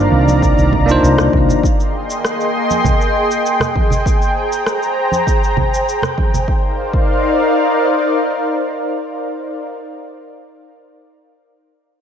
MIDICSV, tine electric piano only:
0, 0, Header, 1, 2, 480
1, 0, Start_track
1, 0, Key_signature, -3, "minor"
1, 0, Tempo, 606061
1, 1293, Time_signature, 4, 2, 24, 8
1, 9513, End_track
2, 0, Start_track
2, 0, Title_t, "Tine electric piano"
2, 0, Program_c, 0, 4
2, 0, Control_c, 0, 64, 127
2, 0, Note_on_c, 0, 58, 78
2, 0, Note_on_c, 0, 62, 68
2, 0, Note_on_c, 0, 63, 71
2, 0, Note_on_c, 0, 65, 64
2, 0, Note_on_c, 0, 72, 80
2, 663, Note_off_c, 0, 58, 0
2, 669, Note_off_c, 0, 62, 0
2, 674, Note_off_c, 0, 63, 0
2, 680, Note_off_c, 0, 65, 0
2, 681, Note_on_c, 0, 58, 81
2, 684, Note_off_c, 0, 72, 0
2, 694, Note_on_c, 0, 62, 77
2, 703, Note_on_c, 0, 63, 76
2, 715, Note_on_c, 0, 65, 74
2, 724, Note_on_c, 0, 72, 94
2, 1258, Note_off_c, 0, 58, 0
2, 1264, Note_off_c, 0, 62, 0
2, 1269, Note_off_c, 0, 63, 0
2, 1275, Note_off_c, 0, 65, 0
2, 1279, Note_off_c, 0, 72, 0
2, 1304, Control_c, 0, 64, 0
2, 9513, End_track
0, 0, End_of_file